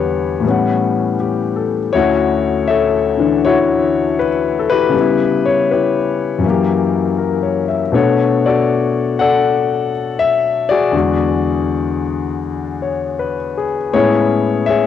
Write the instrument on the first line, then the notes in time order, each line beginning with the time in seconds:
grand piano
Already playing: E2 D3 G3 D4 G4 B4 C#5 F#5
0.40 A2 E3 G3
0.46 B3 C#4 F#5
1.20 G4
1.56 A4
1.93 D2 A3 C#4 E4 F#4 C#5
2.68 A4 C#5 E5
3.17 D3 E3 D4
3.45 E4 F#4 C#5
4.19 B4
4.59 A4
4.70 E4 G4 B4
4.89 C#3
4.93 G3 B3
5.00 E4
5.46 C#5
5.71 E4 G4 B4
6.38 F#2 E3
6.46 A#3 G4
7.18 A#4
7.43 C#5
7.68 E5
7.92 B2 A3 B3 D4 A4 C#5
7.96 F#4
8.46 F#4 A4 D5
9.19 A4 D5 F#5
10.19 E5
10.69 F#4 G#4 D5
10.91 E2 D3 G#3
10.96 F#4
12.82 C#5
13.19 B4
13.57 G#4
13.93 A2 G#3 B3 C#4 E4 G#4 C#5
14.66 G#4 C#5 E5